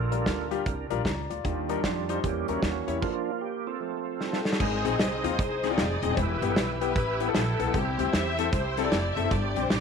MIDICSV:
0, 0, Header, 1, 6, 480
1, 0, Start_track
1, 0, Tempo, 393443
1, 1767, Time_signature, 4, 2, 24, 8
1, 11958, End_track
2, 0, Start_track
2, 0, Title_t, "String section"
2, 0, Program_c, 0, 48
2, 5138, Note_on_c, 0, 69, 84
2, 5144, Note_on_c, 0, 60, 55
2, 5146, Note_on_c, 0, 65, 59
2, 5580, Note_off_c, 0, 69, 0
2, 5583, Note_off_c, 0, 60, 0
2, 5584, Note_off_c, 0, 65, 0
2, 5618, Note_on_c, 0, 68, 93
2, 5628, Note_on_c, 0, 60, 72
2, 5630, Note_on_c, 0, 63, 68
2, 6093, Note_off_c, 0, 68, 0
2, 6096, Note_on_c, 0, 75, 91
2, 6105, Note_on_c, 0, 72, 81
2, 6107, Note_on_c, 0, 68, 72
2, 6529, Note_off_c, 0, 60, 0
2, 6530, Note_off_c, 0, 63, 0
2, 6555, Note_off_c, 0, 72, 0
2, 6566, Note_off_c, 0, 68, 0
2, 6569, Note_on_c, 0, 72, 100
2, 6572, Note_off_c, 0, 75, 0
2, 6580, Note_on_c, 0, 63, 75
2, 6580, Note_on_c, 0, 68, 73
2, 6959, Note_off_c, 0, 72, 0
2, 6960, Note_off_c, 0, 68, 0
2, 6965, Note_on_c, 0, 74, 97
2, 6975, Note_on_c, 0, 68, 69
2, 7352, Note_off_c, 0, 74, 0
2, 7353, Note_on_c, 0, 75, 102
2, 7484, Note_off_c, 0, 63, 0
2, 7496, Note_off_c, 0, 68, 0
2, 7528, Note_on_c, 0, 71, 101
2, 7529, Note_off_c, 0, 75, 0
2, 7542, Note_on_c, 0, 64, 69
2, 7543, Note_on_c, 0, 67, 76
2, 7917, Note_off_c, 0, 71, 0
2, 7919, Note_on_c, 0, 69, 93
2, 8007, Note_off_c, 0, 69, 0
2, 8007, Note_on_c, 0, 71, 89
2, 8286, Note_off_c, 0, 71, 0
2, 8304, Note_on_c, 0, 71, 109
2, 8305, Note_off_c, 0, 67, 0
2, 8307, Note_off_c, 0, 64, 0
2, 8319, Note_on_c, 0, 67, 73
2, 8322, Note_on_c, 0, 64, 76
2, 8917, Note_off_c, 0, 71, 0
2, 8964, Note_off_c, 0, 64, 0
2, 8964, Note_on_c, 0, 69, 107
2, 8979, Note_on_c, 0, 64, 78
2, 9223, Note_off_c, 0, 67, 0
2, 9418, Note_off_c, 0, 64, 0
2, 9436, Note_on_c, 0, 67, 97
2, 9444, Note_off_c, 0, 69, 0
2, 9450, Note_on_c, 0, 60, 73
2, 9451, Note_on_c, 0, 64, 76
2, 9917, Note_off_c, 0, 67, 0
2, 9917, Note_on_c, 0, 76, 110
2, 9931, Note_on_c, 0, 72, 81
2, 9932, Note_on_c, 0, 67, 84
2, 10358, Note_off_c, 0, 60, 0
2, 10359, Note_off_c, 0, 64, 0
2, 10375, Note_off_c, 0, 72, 0
2, 10390, Note_on_c, 0, 72, 112
2, 10393, Note_off_c, 0, 67, 0
2, 10400, Note_off_c, 0, 76, 0
2, 10403, Note_on_c, 0, 64, 83
2, 10407, Note_on_c, 0, 67, 78
2, 10759, Note_off_c, 0, 72, 0
2, 10775, Note_on_c, 0, 74, 108
2, 10776, Note_off_c, 0, 67, 0
2, 10790, Note_on_c, 0, 67, 72
2, 11172, Note_on_c, 0, 76, 105
2, 11175, Note_off_c, 0, 74, 0
2, 11315, Note_off_c, 0, 64, 0
2, 11322, Note_off_c, 0, 67, 0
2, 11357, Note_off_c, 0, 76, 0
2, 11360, Note_on_c, 0, 74, 99
2, 11374, Note_on_c, 0, 67, 77
2, 11747, Note_on_c, 0, 72, 87
2, 11752, Note_off_c, 0, 74, 0
2, 11831, Note_off_c, 0, 67, 0
2, 11834, Note_off_c, 0, 72, 0
2, 11835, Note_on_c, 0, 74, 102
2, 11846, Note_on_c, 0, 67, 71
2, 11958, Note_off_c, 0, 67, 0
2, 11958, Note_off_c, 0, 74, 0
2, 11958, End_track
3, 0, Start_track
3, 0, Title_t, "Tonewheel organ"
3, 0, Program_c, 1, 16
3, 0, Note_on_c, 1, 58, 50
3, 0, Note_on_c, 1, 62, 61
3, 0, Note_on_c, 1, 65, 56
3, 0, Note_on_c, 1, 69, 55
3, 0, Note_on_c, 1, 70, 84
3, 580, Note_off_c, 1, 69, 0
3, 587, Note_off_c, 1, 58, 0
3, 588, Note_off_c, 1, 65, 0
3, 1061, Note_off_c, 1, 62, 0
3, 1061, Note_off_c, 1, 70, 0
3, 1756, Note_on_c, 1, 55, 52
3, 1763, Note_on_c, 1, 62, 51
3, 1771, Note_on_c, 1, 65, 57
3, 2223, Note_off_c, 1, 65, 0
3, 2238, Note_on_c, 1, 65, 83
3, 2531, Note_off_c, 1, 65, 0
3, 2546, Note_on_c, 1, 65, 81
3, 2674, Note_off_c, 1, 55, 0
3, 2678, Note_off_c, 1, 62, 0
3, 2726, Note_on_c, 1, 55, 52
3, 2732, Note_off_c, 1, 65, 0
3, 2737, Note_on_c, 1, 67, 81
3, 2741, Note_on_c, 1, 58, 66
3, 2741, Note_on_c, 1, 61, 60
3, 3013, Note_off_c, 1, 67, 0
3, 3022, Note_off_c, 1, 58, 0
3, 3022, Note_off_c, 1, 61, 0
3, 3032, Note_on_c, 1, 66, 93
3, 3036, Note_on_c, 1, 58, 64
3, 3037, Note_on_c, 1, 61, 63
3, 3081, Note_off_c, 1, 55, 0
3, 3511, Note_on_c, 1, 64, 80
3, 3525, Note_off_c, 1, 66, 0
3, 3647, Note_off_c, 1, 58, 0
3, 3647, Note_off_c, 1, 61, 0
3, 3675, Note_on_c, 1, 53, 55
3, 3678, Note_on_c, 1, 58, 63
3, 3680, Note_on_c, 1, 65, 90
3, 3687, Note_on_c, 1, 62, 64
3, 3695, Note_off_c, 1, 64, 0
3, 4036, Note_off_c, 1, 53, 0
3, 4045, Note_off_c, 1, 62, 0
3, 4163, Note_on_c, 1, 67, 88
3, 4179, Note_off_c, 1, 65, 0
3, 4476, Note_on_c, 1, 69, 89
3, 4477, Note_off_c, 1, 67, 0
3, 4478, Note_on_c, 1, 60, 68
3, 4480, Note_on_c, 1, 65, 64
3, 4600, Note_off_c, 1, 58, 0
3, 4638, Note_off_c, 1, 60, 0
3, 4639, Note_on_c, 1, 53, 49
3, 4644, Note_on_c, 1, 57, 43
3, 4652, Note_on_c, 1, 60, 51
3, 5384, Note_off_c, 1, 69, 0
3, 5386, Note_off_c, 1, 53, 0
3, 5387, Note_off_c, 1, 65, 0
3, 5389, Note_off_c, 1, 57, 0
3, 5393, Note_off_c, 1, 60, 0
3, 5609, Note_on_c, 1, 87, 82
3, 5611, Note_on_c, 1, 80, 63
3, 5612, Note_on_c, 1, 72, 71
3, 5612, Note_on_c, 1, 75, 67
3, 7507, Note_off_c, 1, 87, 0
3, 7508, Note_off_c, 1, 80, 0
3, 7509, Note_off_c, 1, 72, 0
3, 7509, Note_off_c, 1, 75, 0
3, 7524, Note_on_c, 1, 71, 73
3, 7526, Note_on_c, 1, 76, 66
3, 7526, Note_on_c, 1, 79, 66
3, 7526, Note_on_c, 1, 88, 86
3, 9423, Note_off_c, 1, 76, 0
3, 9424, Note_off_c, 1, 71, 0
3, 9438, Note_on_c, 1, 76, 67
3, 9439, Note_on_c, 1, 72, 74
3, 11325, Note_off_c, 1, 88, 0
3, 11341, Note_off_c, 1, 76, 0
3, 11361, Note_on_c, 1, 74, 63
3, 11365, Note_on_c, 1, 86, 82
3, 11958, Note_off_c, 1, 72, 0
3, 11958, Note_off_c, 1, 74, 0
3, 11958, Note_off_c, 1, 79, 0
3, 11958, Note_off_c, 1, 86, 0
3, 11958, End_track
4, 0, Start_track
4, 0, Title_t, "Grand piano"
4, 0, Program_c, 2, 0
4, 0, Note_on_c, 2, 46, 61
4, 140, Note_on_c, 2, 70, 75
4, 141, Note_on_c, 2, 55, 62
4, 141, Note_on_c, 2, 65, 60
4, 142, Note_on_c, 2, 62, 62
4, 256, Note_off_c, 2, 70, 0
4, 257, Note_off_c, 2, 55, 0
4, 257, Note_off_c, 2, 62, 0
4, 257, Note_off_c, 2, 65, 0
4, 576, Note_off_c, 2, 46, 0
4, 620, Note_on_c, 2, 55, 90
4, 620, Note_on_c, 2, 62, 76
4, 623, Note_on_c, 2, 65, 80
4, 625, Note_on_c, 2, 67, 92
4, 736, Note_off_c, 2, 62, 0
4, 737, Note_off_c, 2, 55, 0
4, 738, Note_off_c, 2, 65, 0
4, 739, Note_off_c, 2, 67, 0
4, 1102, Note_on_c, 2, 55, 88
4, 1104, Note_on_c, 2, 62, 85
4, 1106, Note_on_c, 2, 70, 93
4, 1108, Note_on_c, 2, 65, 79
4, 1217, Note_off_c, 2, 55, 0
4, 1219, Note_off_c, 2, 62, 0
4, 1220, Note_off_c, 2, 65, 0
4, 1220, Note_off_c, 2, 70, 0
4, 1586, Note_on_c, 2, 74, 60
4, 1595, Note_on_c, 2, 65, 51
4, 1768, Note_on_c, 2, 51, 74
4, 2043, Note_off_c, 2, 74, 0
4, 2048, Note_off_c, 2, 65, 0
4, 2067, Note_on_c, 2, 62, 78
4, 2068, Note_on_c, 2, 63, 74
4, 2069, Note_on_c, 2, 55, 83
4, 2071, Note_on_c, 2, 70, 93
4, 2181, Note_off_c, 2, 62, 0
4, 2181, Note_off_c, 2, 63, 0
4, 2182, Note_off_c, 2, 55, 0
4, 2183, Note_off_c, 2, 70, 0
4, 2500, Note_off_c, 2, 51, 0
4, 2556, Note_on_c, 2, 62, 71
4, 2557, Note_on_c, 2, 72, 82
4, 2558, Note_on_c, 2, 55, 74
4, 2559, Note_on_c, 2, 63, 70
4, 2665, Note_off_c, 2, 62, 0
4, 2666, Note_off_c, 2, 55, 0
4, 2666, Note_off_c, 2, 72, 0
4, 2667, Note_off_c, 2, 63, 0
4, 2734, Note_on_c, 2, 52, 56
4, 3031, Note_on_c, 2, 61, 65
4, 3032, Note_on_c, 2, 55, 70
4, 3032, Note_on_c, 2, 70, 77
4, 3034, Note_on_c, 2, 64, 64
4, 3143, Note_off_c, 2, 61, 0
4, 3144, Note_off_c, 2, 55, 0
4, 3144, Note_off_c, 2, 70, 0
4, 3145, Note_off_c, 2, 64, 0
4, 3464, Note_off_c, 2, 52, 0
4, 3507, Note_on_c, 2, 55, 67
4, 3509, Note_on_c, 2, 73, 75
4, 3510, Note_on_c, 2, 61, 63
4, 3512, Note_on_c, 2, 64, 58
4, 3622, Note_off_c, 2, 55, 0
4, 3623, Note_off_c, 2, 61, 0
4, 3623, Note_off_c, 2, 73, 0
4, 3624, Note_off_c, 2, 64, 0
4, 5617, Note_on_c, 2, 44, 62
4, 5913, Note_on_c, 2, 60, 72
4, 5914, Note_on_c, 2, 63, 70
4, 5917, Note_on_c, 2, 68, 90
4, 6025, Note_off_c, 2, 60, 0
4, 6025, Note_off_c, 2, 63, 0
4, 6027, Note_off_c, 2, 68, 0
4, 6345, Note_off_c, 2, 44, 0
4, 6393, Note_on_c, 2, 60, 81
4, 6395, Note_on_c, 2, 65, 96
4, 6397, Note_on_c, 2, 63, 74
4, 6504, Note_off_c, 2, 60, 0
4, 6505, Note_off_c, 2, 65, 0
4, 6506, Note_off_c, 2, 63, 0
4, 6877, Note_on_c, 2, 60, 84
4, 6878, Note_on_c, 2, 68, 91
4, 6879, Note_on_c, 2, 63, 77
4, 6929, Note_off_c, 2, 60, 0
4, 6930, Note_off_c, 2, 63, 0
4, 6930, Note_off_c, 2, 68, 0
4, 6960, Note_on_c, 2, 63, 65
4, 6961, Note_on_c, 2, 60, 70
4, 6961, Note_on_c, 2, 65, 79
4, 7088, Note_off_c, 2, 63, 0
4, 7089, Note_off_c, 2, 60, 0
4, 7089, Note_off_c, 2, 65, 0
4, 7356, Note_on_c, 2, 60, 79
4, 7358, Note_on_c, 2, 63, 68
4, 7360, Note_on_c, 2, 68, 83
4, 7408, Note_off_c, 2, 60, 0
4, 7409, Note_off_c, 2, 63, 0
4, 7410, Note_off_c, 2, 68, 0
4, 7446, Note_on_c, 2, 63, 65
4, 7449, Note_on_c, 2, 60, 73
4, 7449, Note_on_c, 2, 68, 81
4, 7531, Note_off_c, 2, 63, 0
4, 7532, Note_off_c, 2, 68, 0
4, 7533, Note_off_c, 2, 60, 0
4, 7538, Note_on_c, 2, 52, 68
4, 7838, Note_on_c, 2, 64, 71
4, 7839, Note_on_c, 2, 59, 76
4, 7840, Note_on_c, 2, 67, 85
4, 7945, Note_off_c, 2, 64, 0
4, 7946, Note_off_c, 2, 59, 0
4, 7947, Note_off_c, 2, 67, 0
4, 8263, Note_off_c, 2, 52, 0
4, 8311, Note_on_c, 2, 59, 80
4, 8311, Note_on_c, 2, 67, 89
4, 8313, Note_on_c, 2, 64, 80
4, 8421, Note_off_c, 2, 59, 0
4, 8422, Note_off_c, 2, 67, 0
4, 8423, Note_off_c, 2, 64, 0
4, 8791, Note_on_c, 2, 64, 76
4, 8791, Note_on_c, 2, 67, 91
4, 8792, Note_on_c, 2, 59, 84
4, 8845, Note_off_c, 2, 59, 0
4, 8845, Note_off_c, 2, 64, 0
4, 8845, Note_off_c, 2, 67, 0
4, 8882, Note_on_c, 2, 59, 71
4, 8883, Note_on_c, 2, 64, 63
4, 8884, Note_on_c, 2, 69, 76
4, 9008, Note_off_c, 2, 59, 0
4, 9008, Note_off_c, 2, 64, 0
4, 9009, Note_off_c, 2, 69, 0
4, 9270, Note_on_c, 2, 59, 80
4, 9270, Note_on_c, 2, 64, 72
4, 9270, Note_on_c, 2, 69, 84
4, 9324, Note_off_c, 2, 59, 0
4, 9324, Note_off_c, 2, 64, 0
4, 9324, Note_off_c, 2, 69, 0
4, 9362, Note_on_c, 2, 64, 68
4, 9363, Note_on_c, 2, 59, 73
4, 9364, Note_on_c, 2, 69, 81
4, 9447, Note_on_c, 2, 48, 67
4, 9448, Note_off_c, 2, 59, 0
4, 9448, Note_off_c, 2, 64, 0
4, 9449, Note_off_c, 2, 69, 0
4, 9748, Note_on_c, 2, 60, 79
4, 9748, Note_on_c, 2, 64, 70
4, 9750, Note_on_c, 2, 67, 87
4, 9859, Note_off_c, 2, 60, 0
4, 9860, Note_off_c, 2, 64, 0
4, 9861, Note_off_c, 2, 67, 0
4, 10177, Note_off_c, 2, 48, 0
4, 10232, Note_on_c, 2, 60, 82
4, 10232, Note_on_c, 2, 64, 77
4, 10232, Note_on_c, 2, 69, 91
4, 10341, Note_off_c, 2, 60, 0
4, 10341, Note_off_c, 2, 64, 0
4, 10341, Note_off_c, 2, 69, 0
4, 10707, Note_on_c, 2, 60, 88
4, 10710, Note_on_c, 2, 64, 80
4, 10710, Note_on_c, 2, 69, 93
4, 10762, Note_off_c, 2, 60, 0
4, 10764, Note_off_c, 2, 64, 0
4, 10764, Note_off_c, 2, 69, 0
4, 10796, Note_on_c, 2, 60, 69
4, 10797, Note_on_c, 2, 64, 66
4, 10798, Note_on_c, 2, 69, 77
4, 10924, Note_off_c, 2, 60, 0
4, 10925, Note_off_c, 2, 64, 0
4, 10925, Note_off_c, 2, 69, 0
4, 11182, Note_on_c, 2, 60, 73
4, 11184, Note_on_c, 2, 69, 91
4, 11185, Note_on_c, 2, 64, 68
4, 11240, Note_off_c, 2, 60, 0
4, 11241, Note_off_c, 2, 64, 0
4, 11241, Note_off_c, 2, 69, 0
4, 11277, Note_on_c, 2, 60, 71
4, 11281, Note_on_c, 2, 64, 68
4, 11281, Note_on_c, 2, 69, 80
4, 11362, Note_on_c, 2, 43, 68
4, 11365, Note_off_c, 2, 60, 0
4, 11367, Note_off_c, 2, 64, 0
4, 11367, Note_off_c, 2, 69, 0
4, 11666, Note_on_c, 2, 60, 76
4, 11667, Note_on_c, 2, 62, 73
4, 11669, Note_on_c, 2, 67, 84
4, 11778, Note_off_c, 2, 60, 0
4, 11779, Note_off_c, 2, 62, 0
4, 11780, Note_off_c, 2, 67, 0
4, 11958, Note_off_c, 2, 43, 0
4, 11958, End_track
5, 0, Start_track
5, 0, Title_t, "Upright bass"
5, 0, Program_c, 3, 32
5, 0, Note_on_c, 3, 34, 96
5, 253, Note_off_c, 3, 34, 0
5, 321, Note_on_c, 3, 38, 80
5, 731, Note_off_c, 3, 38, 0
5, 807, Note_on_c, 3, 36, 91
5, 1063, Note_off_c, 3, 36, 0
5, 1108, Note_on_c, 3, 34, 86
5, 1260, Note_off_c, 3, 34, 0
5, 1283, Note_on_c, 3, 37, 89
5, 1540, Note_off_c, 3, 37, 0
5, 1590, Note_on_c, 3, 38, 86
5, 1741, Note_off_c, 3, 38, 0
5, 1767, Note_on_c, 3, 39, 107
5, 2175, Note_off_c, 3, 39, 0
5, 2242, Note_on_c, 3, 41, 98
5, 2653, Note_off_c, 3, 41, 0
5, 2730, Note_on_c, 3, 40, 90
5, 2985, Note_off_c, 3, 40, 0
5, 3033, Note_on_c, 3, 39, 78
5, 3183, Note_off_c, 3, 39, 0
5, 3203, Note_on_c, 3, 39, 82
5, 3462, Note_off_c, 3, 39, 0
5, 3509, Note_on_c, 3, 40, 81
5, 3662, Note_off_c, 3, 40, 0
5, 5612, Note_on_c, 3, 32, 104
5, 5867, Note_off_c, 3, 32, 0
5, 5912, Note_on_c, 3, 34, 88
5, 6063, Note_off_c, 3, 34, 0
5, 6091, Note_on_c, 3, 36, 96
5, 6346, Note_off_c, 3, 36, 0
5, 6389, Note_on_c, 3, 39, 100
5, 6541, Note_off_c, 3, 39, 0
5, 6574, Note_on_c, 3, 36, 92
5, 7051, Note_on_c, 3, 29, 96
5, 7070, Note_off_c, 3, 36, 0
5, 7305, Note_off_c, 3, 29, 0
5, 7350, Note_on_c, 3, 27, 90
5, 7501, Note_off_c, 3, 27, 0
5, 7530, Note_on_c, 3, 28, 104
5, 7784, Note_off_c, 3, 28, 0
5, 7827, Note_on_c, 3, 31, 96
5, 7979, Note_off_c, 3, 31, 0
5, 8010, Note_on_c, 3, 35, 95
5, 8488, Note_off_c, 3, 35, 0
5, 8488, Note_on_c, 3, 33, 105
5, 8894, Note_off_c, 3, 33, 0
5, 8967, Note_on_c, 3, 34, 102
5, 9221, Note_off_c, 3, 34, 0
5, 9263, Note_on_c, 3, 35, 98
5, 9416, Note_off_c, 3, 35, 0
5, 9443, Note_on_c, 3, 36, 113
5, 9699, Note_off_c, 3, 36, 0
5, 9743, Note_on_c, 3, 38, 104
5, 9896, Note_off_c, 3, 38, 0
5, 9926, Note_on_c, 3, 40, 102
5, 10333, Note_off_c, 3, 40, 0
5, 10404, Note_on_c, 3, 36, 103
5, 10812, Note_off_c, 3, 36, 0
5, 10878, Note_on_c, 3, 29, 118
5, 11136, Note_off_c, 3, 29, 0
5, 11180, Note_on_c, 3, 30, 100
5, 11334, Note_off_c, 3, 30, 0
5, 11360, Note_on_c, 3, 31, 114
5, 11617, Note_off_c, 3, 31, 0
5, 11660, Note_on_c, 3, 35, 99
5, 11814, Note_off_c, 3, 35, 0
5, 11840, Note_on_c, 3, 33, 105
5, 11958, Note_off_c, 3, 33, 0
5, 11958, End_track
6, 0, Start_track
6, 0, Title_t, "Drums"
6, 145, Note_on_c, 9, 42, 67
6, 267, Note_off_c, 9, 42, 0
6, 319, Note_on_c, 9, 36, 76
6, 320, Note_on_c, 9, 38, 99
6, 331, Note_on_c, 9, 42, 83
6, 441, Note_off_c, 9, 36, 0
6, 442, Note_off_c, 9, 38, 0
6, 453, Note_off_c, 9, 42, 0
6, 625, Note_on_c, 9, 42, 79
6, 747, Note_off_c, 9, 42, 0
6, 805, Note_on_c, 9, 42, 85
6, 808, Note_on_c, 9, 36, 106
6, 927, Note_off_c, 9, 42, 0
6, 930, Note_off_c, 9, 36, 0
6, 1104, Note_on_c, 9, 42, 61
6, 1226, Note_off_c, 9, 42, 0
6, 1281, Note_on_c, 9, 36, 72
6, 1288, Note_on_c, 9, 38, 94
6, 1297, Note_on_c, 9, 42, 81
6, 1403, Note_off_c, 9, 36, 0
6, 1410, Note_off_c, 9, 38, 0
6, 1419, Note_off_c, 9, 42, 0
6, 1592, Note_on_c, 9, 42, 70
6, 1714, Note_off_c, 9, 42, 0
6, 1764, Note_on_c, 9, 42, 76
6, 1767, Note_on_c, 9, 36, 95
6, 1886, Note_off_c, 9, 42, 0
6, 1889, Note_off_c, 9, 36, 0
6, 2065, Note_on_c, 9, 42, 70
6, 2187, Note_off_c, 9, 42, 0
6, 2242, Note_on_c, 9, 38, 101
6, 2243, Note_on_c, 9, 36, 73
6, 2253, Note_on_c, 9, 42, 87
6, 2364, Note_off_c, 9, 38, 0
6, 2365, Note_off_c, 9, 36, 0
6, 2375, Note_off_c, 9, 42, 0
6, 2550, Note_on_c, 9, 42, 84
6, 2672, Note_off_c, 9, 42, 0
6, 2729, Note_on_c, 9, 42, 85
6, 2731, Note_on_c, 9, 36, 106
6, 2851, Note_off_c, 9, 42, 0
6, 2853, Note_off_c, 9, 36, 0
6, 3028, Note_on_c, 9, 42, 59
6, 3150, Note_off_c, 9, 42, 0
6, 3203, Note_on_c, 9, 36, 77
6, 3203, Note_on_c, 9, 38, 92
6, 3212, Note_on_c, 9, 42, 83
6, 3325, Note_off_c, 9, 36, 0
6, 3325, Note_off_c, 9, 38, 0
6, 3334, Note_off_c, 9, 42, 0
6, 3512, Note_on_c, 9, 42, 71
6, 3634, Note_off_c, 9, 42, 0
6, 3688, Note_on_c, 9, 49, 76
6, 3690, Note_on_c, 9, 36, 94
6, 3810, Note_off_c, 9, 49, 0
6, 3812, Note_off_c, 9, 36, 0
6, 5132, Note_on_c, 9, 38, 49
6, 5254, Note_off_c, 9, 38, 0
6, 5284, Note_on_c, 9, 38, 58
6, 5406, Note_off_c, 9, 38, 0
6, 5433, Note_on_c, 9, 38, 83
6, 5521, Note_off_c, 9, 38, 0
6, 5521, Note_on_c, 9, 38, 79
6, 5613, Note_on_c, 9, 49, 105
6, 5614, Note_on_c, 9, 36, 110
6, 5643, Note_off_c, 9, 38, 0
6, 5735, Note_off_c, 9, 49, 0
6, 5736, Note_off_c, 9, 36, 0
6, 5917, Note_on_c, 9, 42, 81
6, 6039, Note_off_c, 9, 42, 0
6, 6094, Note_on_c, 9, 38, 115
6, 6105, Note_on_c, 9, 42, 94
6, 6216, Note_off_c, 9, 38, 0
6, 6227, Note_off_c, 9, 42, 0
6, 6396, Note_on_c, 9, 42, 93
6, 6518, Note_off_c, 9, 42, 0
6, 6574, Note_on_c, 9, 36, 125
6, 6574, Note_on_c, 9, 42, 96
6, 6696, Note_off_c, 9, 36, 0
6, 6696, Note_off_c, 9, 42, 0
6, 6872, Note_on_c, 9, 38, 33
6, 6875, Note_on_c, 9, 42, 72
6, 6994, Note_off_c, 9, 38, 0
6, 6997, Note_off_c, 9, 42, 0
6, 7049, Note_on_c, 9, 38, 108
6, 7057, Note_on_c, 9, 42, 91
6, 7171, Note_off_c, 9, 38, 0
6, 7179, Note_off_c, 9, 42, 0
6, 7351, Note_on_c, 9, 42, 82
6, 7473, Note_off_c, 9, 42, 0
6, 7529, Note_on_c, 9, 42, 89
6, 7530, Note_on_c, 9, 36, 110
6, 7651, Note_off_c, 9, 42, 0
6, 7652, Note_off_c, 9, 36, 0
6, 7835, Note_on_c, 9, 42, 81
6, 7957, Note_off_c, 9, 42, 0
6, 8009, Note_on_c, 9, 38, 113
6, 8020, Note_on_c, 9, 42, 94
6, 8131, Note_off_c, 9, 38, 0
6, 8142, Note_off_c, 9, 42, 0
6, 8313, Note_on_c, 9, 42, 89
6, 8435, Note_off_c, 9, 42, 0
6, 8489, Note_on_c, 9, 36, 123
6, 8491, Note_on_c, 9, 42, 91
6, 8611, Note_off_c, 9, 36, 0
6, 8613, Note_off_c, 9, 42, 0
6, 8787, Note_on_c, 9, 42, 65
6, 8909, Note_off_c, 9, 42, 0
6, 8962, Note_on_c, 9, 38, 111
6, 8970, Note_on_c, 9, 42, 94
6, 9084, Note_off_c, 9, 38, 0
6, 9092, Note_off_c, 9, 42, 0
6, 9267, Note_on_c, 9, 42, 77
6, 9389, Note_off_c, 9, 42, 0
6, 9444, Note_on_c, 9, 36, 114
6, 9445, Note_on_c, 9, 42, 89
6, 9566, Note_off_c, 9, 36, 0
6, 9567, Note_off_c, 9, 42, 0
6, 9747, Note_on_c, 9, 42, 84
6, 9869, Note_off_c, 9, 42, 0
6, 9924, Note_on_c, 9, 38, 115
6, 9935, Note_on_c, 9, 42, 106
6, 10046, Note_off_c, 9, 38, 0
6, 10057, Note_off_c, 9, 42, 0
6, 10231, Note_on_c, 9, 42, 90
6, 10353, Note_off_c, 9, 42, 0
6, 10401, Note_on_c, 9, 42, 99
6, 10404, Note_on_c, 9, 36, 118
6, 10523, Note_off_c, 9, 42, 0
6, 10526, Note_off_c, 9, 36, 0
6, 10700, Note_on_c, 9, 38, 34
6, 10703, Note_on_c, 9, 42, 66
6, 10822, Note_off_c, 9, 38, 0
6, 10825, Note_off_c, 9, 42, 0
6, 10881, Note_on_c, 9, 38, 106
6, 10889, Note_on_c, 9, 42, 89
6, 11003, Note_off_c, 9, 38, 0
6, 11011, Note_off_c, 9, 42, 0
6, 11186, Note_on_c, 9, 42, 80
6, 11308, Note_off_c, 9, 42, 0
6, 11361, Note_on_c, 9, 36, 118
6, 11361, Note_on_c, 9, 42, 78
6, 11483, Note_off_c, 9, 36, 0
6, 11483, Note_off_c, 9, 42, 0
6, 11664, Note_on_c, 9, 42, 77
6, 11786, Note_off_c, 9, 42, 0
6, 11839, Note_on_c, 9, 38, 114
6, 11850, Note_on_c, 9, 42, 96
6, 11958, Note_off_c, 9, 38, 0
6, 11958, Note_off_c, 9, 42, 0
6, 11958, End_track
0, 0, End_of_file